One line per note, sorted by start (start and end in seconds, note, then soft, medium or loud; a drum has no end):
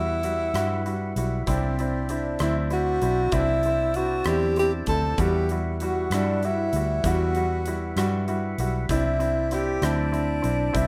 0.00 0.50 E2 medium
0.00 0.19 G3 medium
0.00 0.19 E4 medium
0.00 1.15 E4 medium
0.00 5.13 E4 medium
0.00 0.19 F#4 medium
0.00 1.43 B4 soft
0.00 3.28 E5 medium
0.00 1.43 F#5 soft
0.23 0.50 G3 medium
0.23 0.50 E4 medium
0.23 0.50 F#4 medium
0.23 closed hi-hat medium
0.54 1.12 G2 medium
0.54 0.80 G3 medium
0.54 0.81 E4 medium
0.54 0.81 F#4 medium
0.54 cross-stick medium
0.54 closed hi-hat medium
0.86 1.12 G3 medium
0.86 1.12 E4 medium
0.86 1.12 F#4 medium
0.86 closed hi-hat soft
1.16 1.45 B1 medium
1.16 1.43 G3 medium
1.16 1.43 E4 medium
1.16 1.43 F#4 medium
1.16 closed hi-hat medium
1.47 2.36 C2 medium
1.47 1.73 C4 medium
1.47 2.12 C4 medium
1.47 1.74 D4 medium
1.47 1.74 E4 medium
1.47 5.14 C5 medium
1.47 5.14 D5 medium
1.47 kick medium
1.47 closed hi-hat medium
1.79 2.05 C4 medium
1.79 2.05 D4 medium
1.79 2.05 E4 medium
1.79 closed hi-hat soft
2.09 2.35 C4 medium
2.09 2.35 D4 medium
2.09 2.41 D4 medium
2.09 2.36 E4 medium
2.09 closed hi-hat medium
2.39 2.98 D2 medium
2.39 2.66 C4 medium
2.39 2.67 D4 medium
2.39 2.67 E4 medium
2.39 cross-stick medium
2.39 closed hi-hat medium
2.43 2.56 E4 medium
2.70 2.97 C4 medium
2.70 2.97 D4 medium
2.70 2.97 E4 medium
2.70 3.35 F#4 medium
2.70 closed hi-hat soft
3.02 3.31 B1 medium
3.02 3.28 C4 medium
3.02 3.28 D4 medium
3.02 3.28 E4 medium
3.02 closed hi-hat medium
3.32 4.21 C2 medium
3.32 3.58 C4 medium
3.32 3.59 D4 medium
3.32 3.98 E4 medium
3.32 3.59 E4 medium
3.32 5.16 A5 medium
3.32 kick medium
3.32 closed hi-hat medium
3.63 3.91 C4 medium
3.63 3.91 D4 medium
3.63 3.91 E4 medium
3.63 closed hi-hat soft
3.94 4.22 C4 medium
3.94 4.21 D4 soft
3.94 4.22 E4 medium
3.94 4.29 F#4 medium
3.94 closed hi-hat medium
4.24 4.83 E2 medium
4.24 4.52 C4 medium
4.24 4.52 D4 medium
4.24 4.52 E4 medium
4.24 4.57 G4 medium
4.24 cross-stick medium
4.24 closed hi-hat medium
4.56 4.83 C4 medium
4.56 4.83 D4 medium
4.56 4.83 E4 medium
4.56 4.73 G4 medium
4.56 closed hi-hat soft
4.86 5.16 D2 medium
4.86 5.14 C4 medium
4.86 5.14 D4 medium
4.86 5.14 E4 medium
4.86 5.22 A4 medium
4.86 kick medium
4.86 closed hi-hat medium
5.18 6.07 E2 medium
5.18 5.45 G3 medium
5.18 5.45 E4 medium
5.18 10.87 E4 medium
5.18 5.45 F#4 medium
5.18 5.54 G4 medium
5.18 8.86 B4 soft
5.18 10.87 E5 medium
5.18 8.86 F#5 soft
5.18 kick loud
5.18 closed hi-hat medium
5.49 5.76 G3 medium
5.49 5.76 E4 medium
5.49 5.76 F#4 medium
5.49 closed hi-hat soft
5.80 6.07 G3 medium
5.80 6.07 E4 medium
5.80 6.07 F#4 medium
5.80 6.16 F#4 medium
5.80 closed hi-hat medium
6.10 6.69 G2 medium
6.10 6.38 G3 medium
6.10 6.39 E4 medium
6.10 6.38 F#4 medium
6.10 cross-stick medium
6.10 closed hi-hat medium
6.14 6.47 D4 medium
6.43 6.69 G3 medium
6.43 6.69 E4 medium
6.43 7.10 E4 medium
6.43 6.69 F#4 medium
6.43 closed hi-hat soft
6.73 7.02 D2 medium
6.73 7.00 G3 medium
6.73 7.01 E4 medium
6.73 7.00 F#4 medium
6.73 closed hi-hat medium
7.04 7.92 E2 medium
7.04 7.31 G3 medium
7.04 7.31 E4 medium
7.04 7.31 F#4 medium
7.04 kick medium
7.04 closed hi-hat medium
7.08 7.99 F#4 medium
7.35 7.61 G3 medium
7.35 7.61 E4 medium
7.35 7.61 F#4 medium
7.35 closed hi-hat soft
7.66 7.92 G3 medium
7.66 7.93 E4 medium
7.66 7.93 F#4 medium
7.66 closed hi-hat medium
7.96 8.54 G2 medium
7.96 8.23 G3 medium
7.96 8.23 E4 medium
7.96 8.23 F#4 medium
7.96 cross-stick medium
7.96 closed hi-hat medium
8.28 8.54 G3 medium
8.28 8.54 E4 medium
8.28 8.54 F#4 medium
8.28 closed hi-hat soft
8.58 8.87 B1 medium
8.58 8.85 G3 medium
8.58 8.85 E4 medium
8.58 8.85 F#4 medium
8.58 closed hi-hat medium
8.89 9.78 C2 medium
8.89 9.16 C4 medium
8.89 9.16 D4 medium
8.89 9.16 E4 medium
8.89 9.56 E4 medium
8.89 10.87 C5 medium
8.89 10.87 D5 medium
8.89 kick medium
8.89 closed hi-hat medium
9.19 9.46 C4 medium
9.19 9.46 D4 medium
9.19 9.46 E4 medium
9.19 closed hi-hat soft
9.51 9.77 C4 medium
9.51 9.78 D4 medium
9.51 9.78 E4 medium
9.51 9.86 G4 medium
9.51 cross-stick soft
9.51 closed hi-hat medium
9.82 10.40 D2 medium
9.82 10.08 C4 medium
9.82 10.08 D4 medium
9.82 10.79 D4 medium
9.82 10.08 E4 medium
9.82 cross-stick medium
9.82 closed hi-hat medium
10.12 10.39 C4 medium
10.12 10.39 D4 medium
10.12 10.39 E4 medium
10.12 closed hi-hat soft
10.42 10.73 B1 medium
10.42 10.69 C4 medium
10.42 10.69 D4 medium
10.42 10.69 E4 medium
10.42 closed hi-hat medium
10.73 10.87 C2 medium
10.73 10.87 C4 medium
10.73 10.87 D4 medium
10.73 10.87 E4 medium
10.73 kick medium
10.73 closed hi-hat medium
10.77 10.87 E4 medium